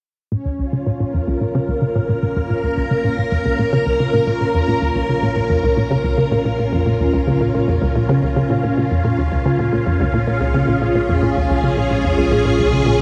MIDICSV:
0, 0, Header, 1, 4, 480
1, 0, Start_track
1, 0, Key_signature, -5, "minor"
1, 0, Tempo, 545455
1, 281, Time_signature, 4, 2, 24, 8
1, 11455, End_track
2, 0, Start_track
2, 0, Title_t, "String machine"
2, 0, Program_c, 0, 50
2, 282, Note_on_c, 0, 61, 68
2, 548, Note_on_c, 0, 65, 81
2, 942, Note_on_c, 0, 70, 78
2, 9017, Note_on_c, 0, 68, 78
2, 9160, Note_off_c, 0, 70, 0
2, 11455, Note_off_c, 0, 61, 0
2, 11455, Note_off_c, 0, 65, 0
2, 11455, Note_off_c, 0, 68, 0
2, 11455, End_track
3, 0, Start_track
3, 0, Title_t, "Synth arpeggio sound"
3, 0, Program_c, 1, 84
3, 280, Note_on_c, 1, 46, 77
3, 323, Note_off_c, 1, 46, 0
3, 400, Note_on_c, 1, 39, 64
3, 471, Note_off_c, 1, 39, 0
3, 521, Note_on_c, 1, 37, 66
3, 591, Note_off_c, 1, 37, 0
3, 640, Note_on_c, 1, 49, 71
3, 746, Note_off_c, 1, 49, 0
3, 762, Note_on_c, 1, 46, 74
3, 832, Note_off_c, 1, 46, 0
3, 883, Note_on_c, 1, 46, 68
3, 988, Note_off_c, 1, 46, 0
3, 1003, Note_on_c, 1, 41, 68
3, 1072, Note_off_c, 1, 41, 0
3, 1122, Note_on_c, 1, 37, 88
3, 1192, Note_off_c, 1, 37, 0
3, 1242, Note_on_c, 1, 46, 76
3, 1284, Note_off_c, 1, 46, 0
3, 1363, Note_on_c, 1, 49, 91
3, 1404, Note_off_c, 1, 49, 0
3, 1482, Note_on_c, 1, 37, 72
3, 1587, Note_off_c, 1, 37, 0
3, 1601, Note_on_c, 1, 49, 69
3, 1671, Note_off_c, 1, 49, 0
3, 1721, Note_on_c, 1, 46, 76
3, 1763, Note_off_c, 1, 46, 0
3, 1842, Note_on_c, 1, 46, 72
3, 1947, Note_off_c, 1, 46, 0
3, 1962, Note_on_c, 1, 46, 70
3, 2032, Note_off_c, 1, 46, 0
3, 2081, Note_on_c, 1, 41, 71
3, 2151, Note_off_c, 1, 41, 0
3, 2201, Note_on_c, 1, 46, 75
3, 2243, Note_off_c, 1, 46, 0
3, 2320, Note_on_c, 1, 39, 69
3, 2391, Note_off_c, 1, 39, 0
3, 2441, Note_on_c, 1, 37, 68
3, 2511, Note_off_c, 1, 37, 0
3, 2561, Note_on_c, 1, 49, 73
3, 2667, Note_off_c, 1, 49, 0
3, 2680, Note_on_c, 1, 46, 78
3, 2751, Note_off_c, 1, 46, 0
3, 2802, Note_on_c, 1, 46, 71
3, 2907, Note_off_c, 1, 46, 0
3, 2922, Note_on_c, 1, 41, 68
3, 2992, Note_off_c, 1, 41, 0
3, 3042, Note_on_c, 1, 37, 89
3, 3112, Note_off_c, 1, 37, 0
3, 3161, Note_on_c, 1, 46, 77
3, 3203, Note_off_c, 1, 46, 0
3, 3281, Note_on_c, 1, 49, 93
3, 3323, Note_off_c, 1, 49, 0
3, 3401, Note_on_c, 1, 37, 69
3, 3506, Note_off_c, 1, 37, 0
3, 3522, Note_on_c, 1, 49, 69
3, 3592, Note_off_c, 1, 49, 0
3, 3641, Note_on_c, 1, 46, 77
3, 3683, Note_off_c, 1, 46, 0
3, 3760, Note_on_c, 1, 46, 70
3, 3866, Note_off_c, 1, 46, 0
3, 3880, Note_on_c, 1, 46, 68
3, 3951, Note_off_c, 1, 46, 0
3, 4000, Note_on_c, 1, 41, 71
3, 4071, Note_off_c, 1, 41, 0
3, 4120, Note_on_c, 1, 46, 76
3, 4162, Note_off_c, 1, 46, 0
3, 4240, Note_on_c, 1, 39, 68
3, 4311, Note_off_c, 1, 39, 0
3, 4359, Note_on_c, 1, 37, 69
3, 4431, Note_off_c, 1, 37, 0
3, 4479, Note_on_c, 1, 49, 71
3, 4586, Note_off_c, 1, 49, 0
3, 4600, Note_on_c, 1, 46, 77
3, 4671, Note_off_c, 1, 46, 0
3, 4720, Note_on_c, 1, 46, 70
3, 4826, Note_off_c, 1, 46, 0
3, 4838, Note_on_c, 1, 41, 68
3, 4910, Note_off_c, 1, 41, 0
3, 4959, Note_on_c, 1, 37, 92
3, 5030, Note_off_c, 1, 37, 0
3, 5079, Note_on_c, 1, 46, 77
3, 5122, Note_off_c, 1, 46, 0
3, 5198, Note_on_c, 1, 49, 92
3, 5242, Note_off_c, 1, 49, 0
3, 5319, Note_on_c, 1, 37, 72
3, 5426, Note_off_c, 1, 37, 0
3, 5438, Note_on_c, 1, 49, 68
3, 5510, Note_off_c, 1, 49, 0
3, 5558, Note_on_c, 1, 46, 77
3, 5602, Note_off_c, 1, 46, 0
3, 5679, Note_on_c, 1, 46, 71
3, 5786, Note_off_c, 1, 46, 0
3, 5800, Note_on_c, 1, 46, 68
3, 5871, Note_off_c, 1, 46, 0
3, 5920, Note_on_c, 1, 41, 69
3, 5991, Note_off_c, 1, 41, 0
3, 6039, Note_on_c, 1, 46, 73
3, 6082, Note_off_c, 1, 46, 0
3, 6159, Note_on_c, 1, 39, 65
3, 6230, Note_off_c, 1, 39, 0
3, 6279, Note_on_c, 1, 37, 69
3, 6351, Note_off_c, 1, 37, 0
3, 6401, Note_on_c, 1, 49, 70
3, 6506, Note_off_c, 1, 49, 0
3, 6521, Note_on_c, 1, 46, 75
3, 6591, Note_off_c, 1, 46, 0
3, 6638, Note_on_c, 1, 46, 71
3, 6745, Note_off_c, 1, 46, 0
3, 6759, Note_on_c, 1, 41, 69
3, 6830, Note_off_c, 1, 41, 0
3, 6879, Note_on_c, 1, 37, 87
3, 6951, Note_off_c, 1, 37, 0
3, 7002, Note_on_c, 1, 46, 75
3, 7044, Note_off_c, 1, 46, 0
3, 7121, Note_on_c, 1, 49, 92
3, 7163, Note_off_c, 1, 49, 0
3, 7242, Note_on_c, 1, 37, 71
3, 7347, Note_off_c, 1, 37, 0
3, 7361, Note_on_c, 1, 49, 69
3, 7431, Note_off_c, 1, 49, 0
3, 7480, Note_on_c, 1, 46, 78
3, 7523, Note_off_c, 1, 46, 0
3, 7600, Note_on_c, 1, 46, 73
3, 7706, Note_off_c, 1, 46, 0
3, 7722, Note_on_c, 1, 46, 70
3, 7792, Note_off_c, 1, 46, 0
3, 7842, Note_on_c, 1, 41, 69
3, 7912, Note_off_c, 1, 41, 0
3, 7962, Note_on_c, 1, 46, 75
3, 8004, Note_off_c, 1, 46, 0
3, 8081, Note_on_c, 1, 39, 67
3, 8151, Note_off_c, 1, 39, 0
3, 8200, Note_on_c, 1, 37, 70
3, 8271, Note_off_c, 1, 37, 0
3, 8321, Note_on_c, 1, 49, 74
3, 8427, Note_off_c, 1, 49, 0
3, 8442, Note_on_c, 1, 46, 79
3, 8512, Note_off_c, 1, 46, 0
3, 8560, Note_on_c, 1, 46, 70
3, 8666, Note_off_c, 1, 46, 0
3, 8682, Note_on_c, 1, 41, 69
3, 8752, Note_off_c, 1, 41, 0
3, 8801, Note_on_c, 1, 37, 92
3, 8872, Note_off_c, 1, 37, 0
3, 8921, Note_on_c, 1, 46, 78
3, 8963, Note_off_c, 1, 46, 0
3, 9042, Note_on_c, 1, 46, 68
3, 9112, Note_off_c, 1, 46, 0
3, 9160, Note_on_c, 1, 37, 73
3, 9266, Note_off_c, 1, 37, 0
3, 9279, Note_on_c, 1, 49, 70
3, 9350, Note_off_c, 1, 49, 0
3, 9400, Note_on_c, 1, 46, 76
3, 9443, Note_off_c, 1, 46, 0
3, 9521, Note_on_c, 1, 46, 74
3, 9627, Note_off_c, 1, 46, 0
3, 9640, Note_on_c, 1, 46, 70
3, 9711, Note_off_c, 1, 46, 0
3, 9761, Note_on_c, 1, 41, 69
3, 9831, Note_off_c, 1, 41, 0
3, 9881, Note_on_c, 1, 46, 78
3, 9923, Note_off_c, 1, 46, 0
3, 10002, Note_on_c, 1, 39, 68
3, 10072, Note_off_c, 1, 39, 0
3, 10120, Note_on_c, 1, 37, 68
3, 10191, Note_off_c, 1, 37, 0
3, 10240, Note_on_c, 1, 49, 72
3, 10346, Note_off_c, 1, 49, 0
3, 10359, Note_on_c, 1, 46, 78
3, 10431, Note_off_c, 1, 46, 0
3, 10480, Note_on_c, 1, 46, 69
3, 10586, Note_off_c, 1, 46, 0
3, 10599, Note_on_c, 1, 41, 69
3, 10670, Note_off_c, 1, 41, 0
3, 10719, Note_on_c, 1, 37, 89
3, 10790, Note_off_c, 1, 37, 0
3, 10840, Note_on_c, 1, 46, 80
3, 10883, Note_off_c, 1, 46, 0
3, 10959, Note_on_c, 1, 46, 73
3, 11030, Note_off_c, 1, 46, 0
3, 11080, Note_on_c, 1, 37, 71
3, 11186, Note_off_c, 1, 37, 0
3, 11199, Note_on_c, 1, 49, 70
3, 11270, Note_off_c, 1, 49, 0
3, 11319, Note_on_c, 1, 46, 76
3, 11362, Note_off_c, 1, 46, 0
3, 11455, End_track
4, 0, Start_track
4, 0, Title_t, "Synth drone"
4, 0, Program_c, 2, 95
4, 282, Note_on_c, 2, 34, 78
4, 7938, Note_off_c, 2, 34, 0
4, 7960, Note_on_c, 2, 34, 79
4, 11455, Note_off_c, 2, 34, 0
4, 11455, End_track
0, 0, End_of_file